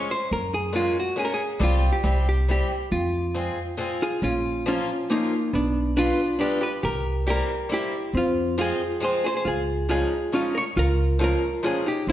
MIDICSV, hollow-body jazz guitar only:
0, 0, Header, 1, 2, 480
1, 0, Start_track
1, 0, Tempo, 435730
1, 339, Time_signature, 3, 2, 24, 8
1, 13354, End_track
2, 0, Start_track
2, 0, Title_t, "Hollow-body jazz guitar"
2, 0, Program_c, 0, 26
2, 0, Note_on_c, 0, 73, 84
2, 118, Note_off_c, 0, 73, 0
2, 123, Note_on_c, 0, 72, 73
2, 354, Note_off_c, 0, 72, 0
2, 360, Note_on_c, 0, 70, 79
2, 598, Note_on_c, 0, 68, 83
2, 606, Note_off_c, 0, 70, 0
2, 829, Note_off_c, 0, 68, 0
2, 834, Note_on_c, 0, 65, 82
2, 1082, Note_off_c, 0, 65, 0
2, 1097, Note_on_c, 0, 66, 64
2, 1309, Note_off_c, 0, 66, 0
2, 1314, Note_on_c, 0, 68, 59
2, 1374, Note_on_c, 0, 70, 64
2, 1388, Note_off_c, 0, 68, 0
2, 1456, Note_off_c, 0, 70, 0
2, 1475, Note_on_c, 0, 68, 85
2, 1794, Note_off_c, 0, 68, 0
2, 1800, Note_on_c, 0, 65, 75
2, 2116, Note_off_c, 0, 65, 0
2, 2121, Note_on_c, 0, 67, 62
2, 2405, Note_off_c, 0, 67, 0
2, 2520, Note_on_c, 0, 67, 60
2, 2747, Note_off_c, 0, 67, 0
2, 2768, Note_on_c, 0, 67, 79
2, 3211, Note_off_c, 0, 67, 0
2, 3216, Note_on_c, 0, 65, 67
2, 4133, Note_off_c, 0, 65, 0
2, 4431, Note_on_c, 0, 65, 49
2, 4439, Note_on_c, 0, 68, 57
2, 4645, Note_off_c, 0, 65, 0
2, 4660, Note_on_c, 0, 61, 47
2, 4665, Note_off_c, 0, 68, 0
2, 4670, Note_on_c, 0, 65, 70
2, 5107, Note_off_c, 0, 61, 0
2, 5112, Note_off_c, 0, 65, 0
2, 5157, Note_on_c, 0, 61, 64
2, 5162, Note_on_c, 0, 65, 69
2, 5595, Note_off_c, 0, 61, 0
2, 5622, Note_on_c, 0, 58, 52
2, 5636, Note_on_c, 0, 63, 79
2, 5643, Note_off_c, 0, 65, 0
2, 6065, Note_off_c, 0, 58, 0
2, 6097, Note_on_c, 0, 59, 53
2, 6109, Note_off_c, 0, 63, 0
2, 6114, Note_on_c, 0, 62, 63
2, 6541, Note_off_c, 0, 59, 0
2, 6563, Note_off_c, 0, 62, 0
2, 6576, Note_on_c, 0, 62, 70
2, 6592, Note_on_c, 0, 65, 96
2, 7018, Note_off_c, 0, 62, 0
2, 7027, Note_off_c, 0, 65, 0
2, 7036, Note_on_c, 0, 62, 53
2, 7059, Note_on_c, 0, 67, 76
2, 7269, Note_off_c, 0, 67, 0
2, 7273, Note_off_c, 0, 62, 0
2, 7282, Note_on_c, 0, 67, 57
2, 7305, Note_on_c, 0, 71, 73
2, 7503, Note_off_c, 0, 67, 0
2, 7526, Note_on_c, 0, 67, 69
2, 7538, Note_off_c, 0, 71, 0
2, 7543, Note_on_c, 0, 70, 88
2, 7971, Note_off_c, 0, 67, 0
2, 8015, Note_on_c, 0, 67, 72
2, 8027, Note_off_c, 0, 70, 0
2, 8045, Note_on_c, 0, 70, 92
2, 8454, Note_off_c, 0, 67, 0
2, 8471, Note_off_c, 0, 70, 0
2, 8507, Note_on_c, 0, 64, 57
2, 8522, Note_on_c, 0, 67, 93
2, 8941, Note_off_c, 0, 64, 0
2, 8974, Note_on_c, 0, 60, 53
2, 8995, Note_off_c, 0, 67, 0
2, 9002, Note_on_c, 0, 65, 73
2, 9416, Note_off_c, 0, 60, 0
2, 9445, Note_off_c, 0, 65, 0
2, 9458, Note_on_c, 0, 65, 66
2, 9484, Note_on_c, 0, 68, 92
2, 9902, Note_off_c, 0, 65, 0
2, 9932, Note_off_c, 0, 68, 0
2, 9946, Note_on_c, 0, 68, 55
2, 9964, Note_on_c, 0, 72, 72
2, 10168, Note_off_c, 0, 68, 0
2, 10181, Note_on_c, 0, 68, 64
2, 10192, Note_off_c, 0, 72, 0
2, 10205, Note_on_c, 0, 72, 85
2, 10216, Note_off_c, 0, 72, 0
2, 10220, Note_on_c, 0, 72, 69
2, 10234, Note_off_c, 0, 68, 0
2, 10287, Note_off_c, 0, 72, 0
2, 10294, Note_on_c, 0, 68, 47
2, 10319, Note_on_c, 0, 72, 73
2, 10403, Note_off_c, 0, 68, 0
2, 10408, Note_on_c, 0, 65, 57
2, 10427, Note_off_c, 0, 72, 0
2, 10439, Note_on_c, 0, 68, 90
2, 10860, Note_off_c, 0, 65, 0
2, 10899, Note_on_c, 0, 65, 67
2, 10902, Note_off_c, 0, 68, 0
2, 10916, Note_on_c, 0, 68, 96
2, 11347, Note_off_c, 0, 65, 0
2, 11355, Note_off_c, 0, 68, 0
2, 11386, Note_on_c, 0, 61, 65
2, 11399, Note_on_c, 0, 65, 79
2, 11614, Note_off_c, 0, 61, 0
2, 11620, Note_on_c, 0, 70, 61
2, 11645, Note_off_c, 0, 65, 0
2, 11651, Note_on_c, 0, 73, 92
2, 11683, Note_off_c, 0, 70, 0
2, 11710, Note_off_c, 0, 73, 0
2, 11865, Note_on_c, 0, 65, 73
2, 11887, Note_on_c, 0, 70, 96
2, 12307, Note_off_c, 0, 65, 0
2, 12353, Note_on_c, 0, 65, 70
2, 12366, Note_off_c, 0, 70, 0
2, 12382, Note_on_c, 0, 70, 100
2, 12791, Note_off_c, 0, 65, 0
2, 12827, Note_on_c, 0, 65, 61
2, 12838, Note_off_c, 0, 70, 0
2, 12843, Note_on_c, 0, 68, 81
2, 13053, Note_off_c, 0, 65, 0
2, 13070, Note_on_c, 0, 63, 59
2, 13083, Note_off_c, 0, 68, 0
2, 13087, Note_on_c, 0, 67, 77
2, 13282, Note_off_c, 0, 63, 0
2, 13291, Note_off_c, 0, 67, 0
2, 13313, Note_on_c, 0, 60, 64
2, 13354, Note_off_c, 0, 60, 0
2, 13354, End_track
0, 0, End_of_file